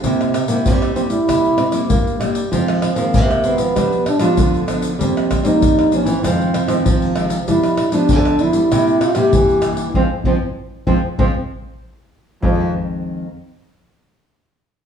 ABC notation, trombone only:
X:1
M:4/4
L:1/16
Q:1/4=97
K:Fm
V:1 name="Trombone"
C3 B, C2 C =E6 z3 | C3 B,3 =B,4 =D F3 z2 | C3 E3 D C6- C z2 | =E3 =D3 E4 F G3 z2 |
C2 C2 z2 C2 C2 z6 | F,2 z12 z2 |]